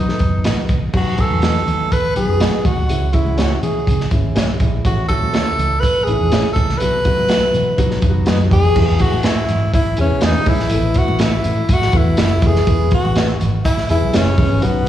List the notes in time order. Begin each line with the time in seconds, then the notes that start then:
Already playing: B1 D#4
0.08 F#3 B3 D#4 A4, snare
0.19 F#1, kick, closed hi-hat, high conga
0.44 A1 F#4 B4 D#5, snare, closed hi-hat, high conga
0.69 C2, kick, closed hi-hat, muted conga, high conga, low conga
0.93 B1 F#3 B3 D#4 F#4, kick, crash, muted conga
1.18 F#3 B3 D#4 A4 G#5, kick, closed hi-hat
1.30 E2, high conga
1.42 F#4 B4 D#5, snare, closed hi-hat, muted conga
1.67 D#2, closed hi-hat, low conga
1.92 B4, kick, closed hi-hat, muted conga, low conga
2.16 B1 F#3 B3 D#4 F#4 G#4, closed hi-hat, muted conga
2.28 F#2
2.40 B1 F#4 B4 D#5, snare, closed hi-hat, high conga
2.65 D#2 F#4, kick, closed hi-hat, muted conga, high conga, low conga
2.77 D2
2.88 C#2 E3 G#3 C#4 E4, closed hi-hat
3.13 E3 G#3 C#4 E4, kick, closed hi-hat
3.25 C#2, high conga
3.37 F#4 G#4 C#5 E5, snare, closed hi-hat
3.62 B2 G#4, closed hi-hat, low conga
3.87 C#3, kick, closed hi-hat, muted conga, low conga
4.00 snare
4.11 G#1 E3 G#3 C#4 E4, kick, closed hi-hat
4.35 B1 E4 G#4 C#5 E5, snare, closed hi-hat, high conga
4.60 A#1 G#3 E4, kick, closed hi-hat, high conga, low conga
4.84 A1 E3 A3 C#4 E4 F#4, kick, closed hi-hat
5.09 A3 C#4 E4 F#4 A4, kick, closed hi-hat
5.21 D#2, high conga
5.33 A4 C#5 E5, snare, closed hi-hat, muted conga
5.57 C#2, closed hi-hat, low conga
5.80 B4, kick, closed hi-hat, muted conga, low conga
6.04 A1 E3 A3 C#4 G#4, closed hi-hat
6.08 D#4
6.13 E4
6.20 E2
6.32 A1 A4 C#5 E5, snare, closed hi-hat, high conga
6.53 C#2 A4, kick, closed hi-hat
6.57 muted conga, high conga, low conga
6.68 C2, snare
6.78 B1 F#3 B3 E4 F#4 B4, closed hi-hat
7.05 F#3 B3 E4 F#4, kick, closed hi-hat, muted conga
7.17 B1, high conga
7.29 F#4 B4 E5, snare, closed hi-hat, muted conga
7.54 B2, closed hi-hat, muted conga, low conga
7.77 B2 F#3 B3 D#4 F#4, kick, closed hi-hat, low conga
7.91 snare
8.02 F#1 F#3 B3 D#4 E4, kick, closed hi-hat, muted conga
8.09 F#4
8.26 F#2 F#4 B4 D#5, snare, closed hi-hat, muted conga, high conga
8.51 F2 G#4, kick, closed hi-hat, muted conga, high conga, low conga
8.76 E2 E3 G#3 B3 E4 F#4, kick, crash
8.82 G#4
8.99 F#4, kick, closed hi-hat, muted conga
9.13 A2, high conga
9.23 E4 G#4 B4 E5, snare, closed hi-hat, muted conga
9.49 G#2, closed hi-hat, low conga
9.74 E4, kick, closed hi-hat, muted conga
9.97 E2 E3 G#3 B3 C#4 E4 G#4, closed hi-hat
10.11 B2
10.21 E2 D#4 G#4 B4 E5, snare, closed hi-hat, muted conga, high conga
10.46 B1 E3 G#3 B3 E4 G#4, kick, open hi-hat, muted conga, high conga, low conga
10.59 A#1, snare
10.70 A1 E3 A3 A#3 E4 A4, closed hi-hat
10.77 B3
10.94 kick, closed hi-hat, muted conga
10.98 F#4
11.08 A1, high conga
11.19 A4 B4 E5, snare, closed hi-hat, muted conga
11.24 E4
11.44 A2, closed hi-hat, muted conga, low conga
11.69 A2, kick, closed hi-hat, muted conga
11.73 F#4
11.82 snare
11.92 E2 E3 A3 B3 E4 B4, kick, closed hi-hat, muted conga
11.97 E4
12.17 F#1 A4 B4 E5, snare, closed hi-hat, muted conga, high conga
12.42 F1 E3 A3 B3 E4 A4, kick, closed hi-hat, muted conga, high conga, low conga
12.47 G#4
12.55 snare
12.67 E1 E3 G#3 B3 E4 G#4, kick, closed hi-hat, muted conga
12.91 F#4, kick, closed hi-hat, muted conga
13.05 A1, high conga
13.15 G#4 B4 E5, snare, closed hi-hat
13.40 G#1, closed hi-hat, muted conga, low conga
13.65 E4, kick, closed hi-hat, muted conga
13.77 snare
13.89 E1 E3 G#3 B3 E4 G#4, closed hi-hat, muted conga
14.02 B1
14.13 F#1 C#4 G#4 B4 E5, snare, closed hi-hat, high conga
14.37 E3 G#3 B3 E4 G#4, kick, open hi-hat, muted conga, high conga, low conga
14.51 G#1
14.61 B1 D#3 F#3 B3 D#4 F#4, closed hi-hat, muted conga